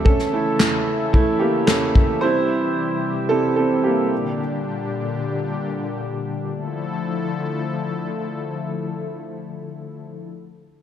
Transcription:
Already playing: analog synth pad A3 E5
0.05 analog synth pad C#3 E3 A4, upright piano C#4 A4, kick
0.19 snare
0.33 upright piano A3 C#4 E4
0.60 snare, clap
1.13 upright piano A3 E4, kick
1.39 upright piano A#3 G4
1.67 upright piano C#4 A4, snare, clap
1.95 kick
2.21 analog synth pad C3 G3 G4, upright piano G3 C4 E4 C5
3.29 upright piano G3 C4 E4 A4
3.56 upright piano C4 A4
3.83 upright piano A#3 G4
4.12 analog synth pad A#2 D3 D4 G4
6.55 analog synth pad D3 F3 A3 E4 A4

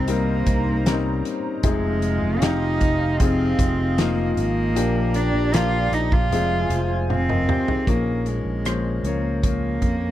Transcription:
Already playing: fretless electric bass C2, grand piano G2 G3 C4 D#4 A#4, cello C4, analog synth pad D#4 C5 A#5
0.08 grand piano G3 C4 D#4 A#4, cello A#3, closed hi-hat
0.46 fretless electric bass C2, kick, closed hi-hat
0.86 grand piano G3 C4 C#4 A#4, snare, closed hi-hat
0.93 grand piano D#4
1.25 closed hi-hat
1.63 fretless electric bass F1, grand piano C3 F3 C4 D#4 G#4, cello G#3, analog synth pad F4 D#5 F5, kick, closed hi-hat
2.02 closed hi-hat
2.22 fretless electric bass F1
2.42 fretless electric bass F1, grand piano F3 C4 D#4 G4, cello D#4, snare, closed hi-hat
2.81 kick, closed hi-hat
3.20 grand piano F3 C4 D#4 G#4, cello C4, kick, closed hi-hat
3.59 fretless electric bass F1, kick, closed hi-hat
3.98 grand piano F3 C4 D#4 F4, cello A#3, snare, closed hi-hat
4.37 fretless electric bass G#1, cello A#3, closed hi-hat
4.75 fretless electric bass A#1, grand piano A#2 F3 A#3 D4 G4, analog synth pad G4 D5 A#5, closed hi-hat
5.14 cello D4, closed hi-hat
5.34 fretless electric bass A#1
5.54 grand piano F3 A#3 D4 G4, cello F4, snare, closed hi-hat
5.92 fretless electric bass A#1, cello D#4, closed hi-hat
6.12 cello F4, kick
6.30 fretless electric bass F1, grand piano C3 F3 G#3 C4 G#4, analog synth pad F4 C5 G#5, closed hi-hat
6.70 fretless electric bass F1, closed hi-hat
7.10 cello C4, grand piano C5 F5, high tom
7.29 grand piano A#4 D#5, mid tom
7.48 grand piano G4 C5, mid tom
7.68 grand piano D#4 G#4, floor tom
7.87 fretless electric bass A#1, grand piano A#2 F3 A#3 C#4 A#4, cello A#3, kick, closed hi-hat
8.26 cello G#3, closed hi-hat
8.45 fretless electric bass A#1
8.65 grand piano F3 A#3 C#4 C5, cross-stick, closed hi-hat
9.03 fretless electric bass C#2, grand piano F3 A#3 C#4 C#5, cello A#3, closed hi-hat
9.43 grand piano F3 A#3 C#4 A#4, cello A#3, kick, closed hi-hat
9.82 fretless electric bass F2, kick, closed hi-hat

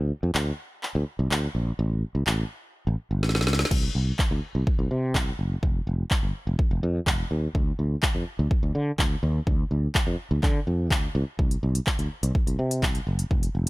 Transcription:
Already playing: fretless electric bass D2
0.23 fretless electric bass F2
0.35 fretless electric bass D2, clap
0.83 clap
0.95 fretless electric bass D2
1.19 fretless electric bass C2
1.31 fretless electric bass D2, clap
1.55 fretless electric bass A#1
1.79 fretless electric bass A1
2.15 fretless electric bass C#2
2.27 fretless electric bass A1, clap
2.87 fretless electric bass A1
3.11 fretless electric bass G1
3.23 fretless electric bass A1, snare
3.29 snare
3.35 snare
3.41 snare
3.47 fretless electric bass C#2, snare
3.53 snare
3.59 snare
3.65 snare
3.71 fretless electric bass C2, kick, crash
3.95 fretless electric bass C2
4.19 kick, clap
4.31 fretless electric bass D2
4.55 fretless electric bass C2
4.67 kick
4.79 fretless electric bass C2
4.91 fretless electric bass C3
5.15 fretless electric bass C2, kick, clap
5.39 fretless electric bass F#1
5.63 fretless electric bass F1, kick
5.87 fretless electric bass F1
6.11 kick, clap
6.23 fretless electric bass G1
6.47 fretless electric bass F1
6.59 kick
6.71 fretless electric bass F1
6.83 fretless electric bass F2
7.07 fretless electric bass F1, kick, clap
7.31 fretless electric bass D#2
7.55 fretless electric bass D2, kick
7.79 fretless electric bass D2
8.03 kick, clap
8.15 fretless electric bass F2
8.39 fretless electric bass D2
8.51 kick
8.63 fretless electric bass D2
8.75 fretless electric bass D3
8.99 fretless electric bass D2, kick, clap
9.23 fretless electric bass D#2
9.47 fretless electric bass D2, kick
9.71 fretless electric bass D2
9.95 kick, clap
10.07 fretless electric bass F2
10.31 fretless electric bass D2
10.43 fretless electric bass D3, kick, clap
10.67 fretless electric bass F2
10.91 fretless electric bass D2, kick, clap
11.15 fretless electric bass C#2
11.39 fretless electric bass C2, kick
11.51 closed hi-hat
11.63 fretless electric bass C2
11.75 closed hi-hat
11.87 kick, clap
11.99 fretless electric bass D2, closed hi-hat
12.23 fretless electric bass C2, closed hi-hat
12.35 kick
12.47 fretless electric bass C2, closed hi-hat
12.59 fretless electric bass C3
12.71 closed hi-hat
12.83 fretless electric bass C2, kick, clap
12.95 closed hi-hat
13.07 fretless electric bass F#1
13.19 closed hi-hat
13.31 fretless electric bass F1, kick
13.43 closed hi-hat
13.55 fretless electric bass F1

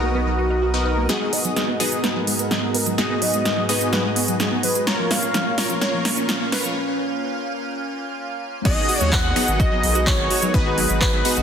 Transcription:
Already playing: sub bass B1, supersaw synth B3 D#4 F#4 A#4 D#5, ambient pad B3 D#4 A#5, analog synth lead F#4, synth texture D#6
0.03 synth arpeggio sound A#3
0.15 synth arpeggio sound B3
0.27 synth arpeggio sound F#3
0.38 synth arpeggio sound D#4
0.50 synth arpeggio sound D#4
0.62 synth arpeggio sound F#4
0.74 supersaw synth B3 D#4 F#4 A#4 D#5, synth arpeggio sound B4
0.85 analog synth lead A#4, synth arpeggio sound B4
0.97 synth arpeggio sound A#3
1.09 ambient pad G#2 G#3 B3 F#4 A#4, synth arpeggio sound F#3, supersaw synth B3 D#4 F#4 G#4 D#5, analog synth lead G#4, snare, closed hi-hat
1.21 synth arpeggio sound G#3
1.33 synth arpeggio sound B3, analog synth lead D#5, open hi-hat
1.45 synth arpeggio sound F#3, closed hi-hat
1.56 synth arpeggio sound G#3, snare, closed hi-hat
1.68 synth arpeggio sound B3
1.80 synth arpeggio sound F#3, supersaw synth B3 D#4 F#4 G#4 D#5, analog synth lead B4, open hi-hat
1.92 synth arpeggio sound G#3, closed hi-hat
2.04 synth arpeggio sound B3, analog synth lead B4, snare, closed hi-hat
2.16 synth arpeggio sound F#3
2.27 synth arpeggio sound G#3, open hi-hat
2.39 synth arpeggio sound B3, closed hi-hat
2.51 synth arpeggio sound F#3, snare, closed hi-hat
2.63 synth arpeggio sound G#3
2.75 synth arpeggio sound B3, analog synth lead A#4, open hi-hat
2.86 synth arpeggio sound F#3, closed hi-hat
2.98 synth arpeggio sound G#3, supersaw synth B3 D#4 F#4 G#4 D#5, analog synth lead G#4, ambient pad G#4, snare, closed hi-hat
3.10 synth arpeggio sound B3
3.22 synth arpeggio sound F#3, analog synth lead D#5, open hi-hat
3.34 synth arpeggio sound G#3, closed hi-hat
3.45 synth arpeggio sound B3, snare, closed hi-hat
3.57 synth arpeggio sound F#3
3.69 synth arpeggio sound G#3, supersaw synth B3 D#4 F#4 G#4 D#5, analog synth lead B4, open hi-hat
3.81 synth arpeggio sound B3, closed hi-hat
3.93 synth arpeggio sound F#3, analog synth lead B4, snare, closed hi-hat
4.04 synth arpeggio sound G#3
4.16 synth arpeggio sound B3, open hi-hat
4.28 synth arpeggio sound F#3, closed hi-hat
4.40 synth arpeggio sound G#3, snare, closed hi-hat
4.52 synth arpeggio sound B3
4.63 synth arpeggio sound F#3, analog synth lead B4, open hi-hat
4.75 synth arpeggio sound G#3, closed hi-hat
4.87 ambient pad A#2 A#3 C#4 F4 F5, synth arpeggio sound C#4, supersaw synth F4 A#4 C#5, analog synth lead A#4, snare, closed hi-hat
4.99 synth arpeggio sound F3
5.11 synth arpeggio sound A#3, analog synth lead F5, snare, open hi-hat
5.23 synth arpeggio sound C#4, closed hi-hat
5.34 synth arpeggio sound F3, snare, closed hi-hat
5.46 synth arpeggio sound A#3
5.58 synth arpeggio sound C#4, supersaw synth F4 A#4 C#5, analog synth lead C#5, snare, open hi-hat
5.70 synth arpeggio sound F3, closed hi-hat
5.81 synth arpeggio sound C#4, supersaw synth F4 A#4 C#5, analog synth lead C#5, snare, closed hi-hat
5.94 synth arpeggio sound F3
6.05 synth arpeggio sound A#3, snare, open hi-hat
6.17 synth arpeggio sound C#4, closed hi-hat
6.29 synth arpeggio sound F3, snare, closed hi-hat
6.41 synth arpeggio sound A#3
6.52 synth arpeggio sound C#4, supersaw synth F4 A#4 C#5, analog synth lead B4, snare, open hi-hat
6.64 synth arpeggio sound F3, closed hi-hat
8.65 sub bass G#1, synth arpeggio sound F#3 F#4, ambient pad G#3 D#4 F#4 A#4 B4, supersaw synth B3 D#4 F#4 G#4 D#5, analog synth lead D#5, synth pluck D#5, kick, closed hi-hat, crash
8.89 synth arpeggio sound F#4 F#5, open hi-hat
9.01 sub bass D#2, synth arpeggio sound F#3 F#4, analog synth lead C#5, closed hi-hat
9.12 synth pluck F#5, analog synth lead F#5, kick, clap, closed hi-hat
9.24 synth arpeggio sound F#4 F#5
9.36 synth arpeggio sound F#3 F#4, supersaw synth B3 D#4 F#4 G#4 D#5, finger snap, open hi-hat
9.48 sub bass G#1, closed hi-hat
9.60 synth arpeggio sound F#4 F#5, synth pluck D#5, analog synth lead D#5, kick, closed hi-hat
9.72 synth arpeggio sound F#3 F#4
9.83 sub bass B1, open hi-hat
9.95 synth arpeggio sound F#4 F#5, closed hi-hat
10.07 synth arpeggio sound F#3 F#4, synth pluck C#5, analog synth lead C#5, kick, clap, closed hi-hat
10.19 sub bass G#1
10.31 synth arpeggio sound F#4 F#5, open hi-hat
10.42 synth arpeggio sound F#3 F#4, closed hi-hat
10.54 sub bass G#1, supersaw synth B3 D#4 F#4 G#4 D#5, ambient pad G#4, synth pluck B4, analog synth lead B4, kick, closed hi-hat
10.66 synth arpeggio sound F#4 F#5
10.78 synth arpeggio sound F#3 F#4, open hi-hat
10.90 sub bass G#1, closed hi-hat
11.01 synth arpeggio sound F#4 F#5, synth pluck B4, analog synth lead B4, kick, clap, closed hi-hat
11.13 synth arpeggio sound F#3 F#4
11.25 supersaw synth B3 D#4 F#4 G#4 D#5, open hi-hat
11.37 sub bass G#1, synth arpeggio sound F#4 F#5, closed hi-hat

